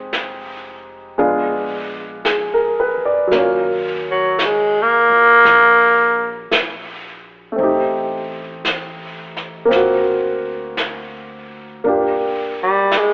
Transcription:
Already playing: F1 G#3 C4 D#4 G4
0.13 brush sweep, snare, hi-hat pedal
1.18 A#1 G#3 B3 D4 F4, brush sweep
2.25 G#4, brush sweep, snare, hi-hat pedal
2.54 A#4
2.80 B4
2.97 muted upright bass stroke
3.05 D5
3.27 F#3
3.31 D#2 A#3 C#4, brush sweep, snare
3.38 F4
4.11 F#3
4.39 brush sweep, snare, hi-hat pedal
4.46 G#3
4.83 A#3
5.10 A#2
5.45 A#1, brush sweep, snare
6.51 A#1, brush sweep, snare, hi-hat pedal
7.52 A3 C4
7.58 A1 D#4, brush sweep
7.63 G4
8.65 brush sweep, snare, hi-hat pedal
9.37 snare
9.65 A#3 C4
9.71 D2 F4, brush sweep, snare
9.76 F#4
10.77 brush sweep, snare, hi-hat pedal
11.84 G1 A#3 D4 F4, brush sweep
11.88 G4
12.63 G3
12.91 brush sweep, snare, hi-hat pedal
12.98 G#3

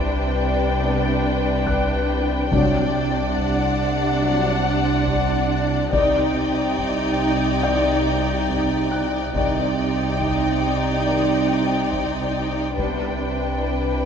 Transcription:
Already playing: C2 C3 D4 B4 G5 G6 B6
0.79 G3 B3
1.67 F#6, taiko
2.52 C2 C3 F#3 D4 D5, taiko
3.37 F#5, taiko
4.21 F#3 D4
5.08 taiko
5.92 C2 C3 D#3 D#4 D5 G5, taiko
6.78 taiko
7.63 D#3 D5 G5 G6
8.49 taiko
8.91 F#6
9.34 C2 C3 D#3 D#4 D5 G5, taiko
10.20 taiko
11.06 D#3 D5
11.92 taiko
12.78 C2 C3 G3 B3 D4 B4 G5, taiko

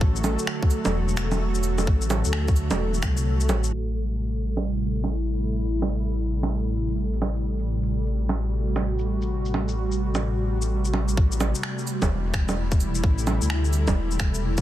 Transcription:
Already playing: D3 F#3 A3 F#4 A4
0.01 A1, kick
0.16 shaker
0.24 low bongo, cabasa
0.39 shaker
0.47 finger snap
0.63 kick
0.70 cabasa
0.85 E1, low bongo, shaker
1.08 shaker
1.17 finger snap, cabasa
1.32 low bongo, shaker
1.55 shaker
1.63 cabasa
1.78 low bongo, shaker
1.87 A1, kick
2.02 shaker
2.10 low bongo, cabasa
2.25 D2, shaker
2.33 finger snap
2.48 kick, shaker
2.56 cabasa
2.71 E1, low bongo, shaker
2.94 shaker
3.03 C2, finger snap, kick, cabasa
3.17 cabasa, shaker
3.41 shaker
3.49 A1, low bongo, cabasa
3.64 shaker
3.72 A1 C3
3.79 G3
3.87 shaker
4.10 shaker
4.26 E4
4.34 shaker
4.57 low bongo, shaker
5.04 low bongo, shaker
5.27 shaker
5.50 shaker
5.74 shaker
5.82 low bongo
5.97 shaker
6.20 shaker
6.43 low bongo, shaker
6.90 shaker
7.13 shaker
7.22 low bongo
7.36 shaker
7.59 shaker
7.83 shaker
7.94 F#4
8.06 shaker
8.29 low bongo, shaker
8.76 low bongo, shaker
8.99 shaker
9.22 shaker
9.46 shaker
9.54 low bongo
9.69 shaker
9.92 shaker
10.15 low bongo, shaker
10.62 shaker
10.85 shaker
10.94 low bongo
11.08 shaker
11.17 A1, kick
11.32 A3, shaker
11.41 low bongo, cabasa
11.55 shaker
11.63 finger snap
11.78 shaker
11.87 cabasa
12.02 E1, kick, low bongo, shaker
12.10 E4
12.34 finger snap, kick, cabasa
12.49 low bongo, shaker
12.66 A4
12.72 kick, shaker
12.80 cabasa
12.95 shaker
13.04 A1, kick
13.18 shaker
13.27 low bongo, cabasa
13.42 D2, shaker
13.50 finger snap
13.64 shaker
13.73 cabasa
13.88 E1, kick, low bongo, shaker
14.11 shaker
14.20 finger snap, kick, cabasa
14.34 cabasa, shaker
14.57 kick, shaker

